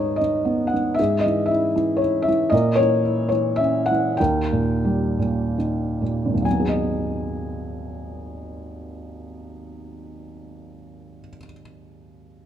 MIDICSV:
0, 0, Header, 1, 2, 480
1, 0, Start_track
1, 0, Key_signature, 5, "minor"
1, 0, Tempo, 518135
1, 911, Time_signature, 3, 2, 24, 8
1, 2821, Tempo, 546946
1, 3301, Tempo, 598205
1, 3781, Tempo, 652174
1, 4261, Tempo, 754717
1, 4741, Tempo, 860832
1, 7141, Tempo, 884956
1, 8528, End_track
2, 0, Start_track
2, 0, Title_t, "Felt piano"
2, 0, Program_c, 0, 0
2, 0, Control_c, 0, 64, 127
2, 0, Note_on_c, 0, 44, 46
2, 0, Note_on_c, 0, 51, 35
2, 0, Note_on_c, 0, 63, 38
2, 0, Note_on_c, 0, 71, 41
2, 0, Note_on_c, 0, 73, 54
2, 0, Note_on_c, 0, 75, 58
2, 148, Note_off_c, 0, 71, 0
2, 151, Note_off_c, 0, 75, 0
2, 151, Note_on_c, 0, 75, 59
2, 177, Note_off_c, 0, 51, 0
2, 178, Note_off_c, 0, 73, 0
2, 191, Note_on_c, 0, 51, 36
2, 417, Note_on_c, 0, 59, 37
2, 622, Note_on_c, 0, 78, 62
2, 666, Note_off_c, 0, 51, 0
2, 666, Note_off_c, 0, 75, 0
2, 679, Note_on_c, 0, 51, 38
2, 871, Note_off_c, 0, 63, 0
2, 874, Note_off_c, 0, 44, 0
2, 875, Note_on_c, 0, 76, 67
2, 891, Note_off_c, 0, 59, 0
2, 896, Note_off_c, 0, 78, 0
2, 909, Note_off_c, 0, 51, 0
2, 920, Note_on_c, 0, 68, 47
2, 922, Note_on_c, 0, 44, 47
2, 924, Control_c, 0, 64, 0
2, 1068, Control_c, 0, 64, 127
2, 1107, Note_on_c, 0, 75, 59
2, 1142, Note_off_c, 0, 76, 0
2, 1163, Note_on_c, 0, 52, 37
2, 1350, Note_on_c, 0, 76, 62
2, 1375, Note_off_c, 0, 75, 0
2, 1400, Note_on_c, 0, 64, 41
2, 1592, Note_off_c, 0, 68, 0
2, 1612, Note_off_c, 0, 52, 0
2, 1626, Note_on_c, 0, 52, 38
2, 1822, Note_on_c, 0, 73, 64
2, 1855, Note_off_c, 0, 64, 0
2, 1856, Note_off_c, 0, 76, 0
2, 1869, Note_on_c, 0, 64, 38
2, 2059, Note_on_c, 0, 76, 65
2, 2086, Note_off_c, 0, 73, 0
2, 2098, Note_off_c, 0, 52, 0
2, 2112, Note_on_c, 0, 52, 39
2, 2301, Note_off_c, 0, 76, 0
2, 2307, Note_off_c, 0, 44, 0
2, 2313, Note_on_c, 0, 75, 70
2, 2328, Note_off_c, 0, 64, 0
2, 2331, Note_on_c, 0, 46, 53
2, 2338, Note_off_c, 0, 52, 0
2, 2349, Control_c, 0, 64, 0
2, 2353, Note_on_c, 0, 70, 47
2, 2498, Control_c, 0, 64, 127
2, 2552, Note_on_c, 0, 73, 81
2, 2574, Note_off_c, 0, 75, 0
2, 2599, Note_on_c, 0, 52, 37
2, 2826, Note_on_c, 0, 64, 40
2, 3019, Note_off_c, 0, 73, 0
2, 3027, Note_off_c, 0, 70, 0
2, 3032, Note_on_c, 0, 73, 58
2, 3045, Note_off_c, 0, 52, 0
2, 3058, Note_on_c, 0, 52, 38
2, 3273, Note_on_c, 0, 76, 71
2, 3297, Note_off_c, 0, 73, 0
2, 3308, Note_on_c, 0, 61, 41
2, 3506, Note_off_c, 0, 76, 0
2, 3514, Note_on_c, 0, 78, 73
2, 3540, Note_off_c, 0, 52, 0
2, 3552, Note_on_c, 0, 52, 36
2, 3746, Note_off_c, 0, 46, 0
2, 3756, Note_off_c, 0, 64, 0
2, 3765, Note_on_c, 0, 79, 67
2, 3770, Note_off_c, 0, 61, 0
2, 3777, Note_off_c, 0, 78, 0
2, 3782, Note_off_c, 0, 52, 0
2, 3790, Note_on_c, 0, 39, 44
2, 3791, Control_c, 0, 64, 0
2, 3791, Note_on_c, 0, 70, 47
2, 3930, Control_c, 0, 64, 127
2, 4024, Note_on_c, 0, 46, 35
2, 4263, Note_on_c, 0, 55, 34
2, 4474, Note_off_c, 0, 46, 0
2, 4483, Note_on_c, 0, 46, 32
2, 4709, Note_off_c, 0, 79, 0
2, 4720, Note_off_c, 0, 70, 0
2, 4731, Note_on_c, 0, 51, 28
2, 4967, Note_off_c, 0, 46, 0
2, 4976, Note_on_c, 0, 46, 27
2, 5106, Note_on_c, 0, 32, 30
2, 5148, Note_off_c, 0, 39, 0
2, 5156, Note_on_c, 0, 39, 26
2, 5200, Note_off_c, 0, 55, 0
2, 5200, Note_on_c, 0, 54, 28
2, 5203, Note_off_c, 0, 51, 0
2, 5213, Note_off_c, 0, 46, 0
2, 5217, Note_on_c, 0, 80, 43
2, 5228, Control_c, 0, 64, 0
2, 5250, Note_on_c, 0, 59, 27
2, 5299, Note_on_c, 0, 68, 30
2, 5319, Control_c, 0, 64, 127
2, 5346, Note_on_c, 0, 75, 34
2, 7835, Note_off_c, 0, 32, 0
2, 7884, Note_off_c, 0, 39, 0
2, 7927, Note_off_c, 0, 54, 0
2, 7943, Note_off_c, 0, 80, 0
2, 7975, Note_off_c, 0, 59, 0
2, 8023, Note_off_c, 0, 68, 0
2, 8069, Note_off_c, 0, 75, 0
2, 8528, End_track
0, 0, End_of_file